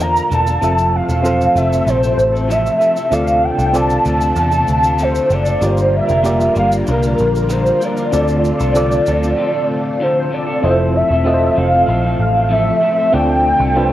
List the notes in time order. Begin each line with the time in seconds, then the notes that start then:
Already playing: E2 D3 A#3 F4 A4 D5
0.00 A#3 D4 F4 A#5, shaker
0.16 shaker
0.29 E1 A#3 D4 F4 A4 A5, shaker
0.46 D4 F4 A4, shaker
0.61 F1 C3 F3 A3 C4 E4 F4 A4 E5, shaker
0.78 shaker
0.95 F5
1.08 E1 C4 E4 A4, shaker
1.23 F3 C4 F4 A4 C5, shaker
1.41 shaker
1.55 F1 F3 C4 E4 A4 E5, shaker
1.70 C4 E4 A4, shaker
1.85 A#1 F3 C4 E4 A4 C5, shaker
2.01 C4 E4 A4, shaker
2.18 A1, shaker
2.32 C4 E4 A4, shaker
2.48 F3 C4 E4 A4 E5, shaker
2.66 shaker
2.79 F3 C4 E4 A4, shaker
2.95 C4 E4 A4, shaker
3.11 D2 C3 D3 A3 C4 D4 F4 A4 D5 F5, shaker
3.28 shaker
3.44 G5
3.57 C2 C4 F4 A4, shaker
3.73 D3 C4 F4 A4 D5 A5, shaker
3.90 shaker
4.05 D2 D3 C4 F4 A4 A5, shaker
4.21 shaker
4.36 E2 D3 C4 F4 A4, shaker
4.51 C4 F4 A4, shaker
4.68 D2, shaker
4.83 C4 F4 A4, shaker
4.98 D3 C4 F4 A4, shaker
5.02 C5
5.15 shaker
5.29 F#1 D3 C4 F4 A4, shaker
5.34 D5
5.45 C4 F4 A4, shaker
5.61 G1 D3 G3 A#3 D4 F4 G4 A#4 D5, shaker
5.65 C5
5.77 shaker
5.96 E5
6.07 F1 D4 F4 A#4, shaker
6.23 G3 A#3 D4 F4 G4 A#4 D5, shaker
6.41 shaker
6.55 G1 G3 D4 F4 A#4 F5, shaker
6.72 shaker
6.87 C2 G3 D4 F4 A#4, shaker
7.03 D4 F4 A#4, shaker
7.18 A#1, shaker
7.35 shaker
7.49 G3 D4 F4 A#4 C5, shaker
7.66 shaker
7.80 G3 D4 F4 A#4 D5, shaker
7.95 D4 F4 A#4, shaker
8.11 D2 D3 A3 C4 F4 A4 D5, shaker
8.28 shaker
8.45 shaker
8.58 C2 C4 F4 A4, shaker
8.73 D3 C4 F4 A4 D5, shaker
8.91 shaker
9.05 D2 D3 C4 F4 A4, shaker
9.22 C4 F4 A4, shaker
9.37 D3 C4 F4 A4
9.52 C4 F4 A4
10.00 D3 C4 F4 A4 C5
10.30 D3 C4 F4 A4 D5
10.47 C4 F4 A4
10.62 F1 F3 A3 C4 E4 F4 A4 C5 D#5
10.71 E5
10.96 E5
11.09 E1 C4 E4 A4
11.24 F3 C4 E4 F4 A4 D#5
11.34 C5
11.55 F1 F3 C4 E4 A4 F5
11.70 C4 E4 A4
11.87 A#1 F3 C4 E4 A4
12.02 C4 E4 A4
12.19 A1 F5
12.33 C4 E4 A4
12.49 F3 C4 E4 A4 E5
12.81 F3 C4 E4 A4
12.96 C4 E4 A4
13.12 D2 D3 C4 D4 F4 A4 D5 G5
13.58 C2 C4 F4 A4
13.74 D3 C4 D4 F4 A4 B4
13.84 C5